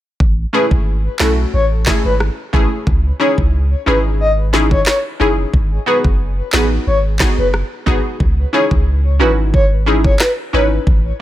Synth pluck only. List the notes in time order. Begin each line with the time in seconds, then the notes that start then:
0.53 A3 C#4 E4 G#4
1.20 A3 C#4 E4 F#4
1.86 A3 C#4 E4 G#4
2.53 A3 C#4 E4 G#4
3.20 C#4 D#4 E4 G#4
3.86 C#4 D#4 E4 G#4
4.53 C#4 D#4 E4 G#4
5.20 C#4 D#4 E4 G#4
5.86 B3 D#4 F#4 G#4
6.53 B3 D#4 F#4 B4
7.20 B3 D#4 F#4 G#4
7.86 B3 D#4 F#4 G#4
8.53 C#4 D#4 E4 G#4
9.19 C#4 D#4 E4 F#4
9.86 C#4 D#4 E4 G#4
10.53 C#4 D#4 E4 B4